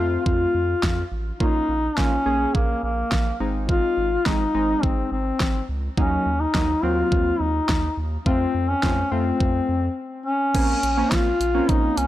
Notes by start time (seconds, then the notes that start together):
Already playing: F2 A3 C4 F4
0.26 F2 F4, kick
0.55 F2
0.83 F2, kick, snare
1.12 A1
1.40 A#1 A#3 C#4 D#4 F4, kick
1.69 A#1
1.97 A#1 A#3 C#4 F4, kick, snare
2.26 A#1 A#3 C#4 G#4
2.55 A#1 A#3, kick
2.83 A#1 A#3
3.12 A#1, kick, snare
3.40 G#1 G#3 C4 D#4
3.69 F4, kick
3.97 G#1
4.26 G#1 G#3 C4 D#4, kick, snare
4.55 G#1 G#3 C4 D#4
4.83 G#1 C4, kick
5.12 G#1 C4
5.40 G#1, kick, snare
5.69 C#2
5.97 D#2 F#3 A#3 C#4 D#4, kick
6.26 D#2
6.40 D#4
6.55 D#2 F#3 A#3 D#4, kick, snare
6.83 D#2 F#3 A#3 C4 F4
7.12 D#2, kick
7.40 D#2 D#4
7.69 D#2, kick, snare
7.97 D#2
8.26 F2 A3 C4 F4, kick
8.55 F2
8.69 C#4
8.83 F2 A3 C4 F4, kick, snare
9.12 F2 A3 C4 F4
9.40 F2, kick
9.69 F2
10.26 C#4
10.55 A#1 A#3 C4 C#4, kick, closed hi-hat, crash
10.83 A#1, closed hi-hat
10.97 A#3 C4 C#4
11.12 A#1 F4, kick, snare, closed hi-hat
11.40 A#1, closed hi-hat
11.55 A#3 C4 C#4
11.69 A#1 D#4, kick, closed hi-hat
11.97 C2 C#4, closed hi-hat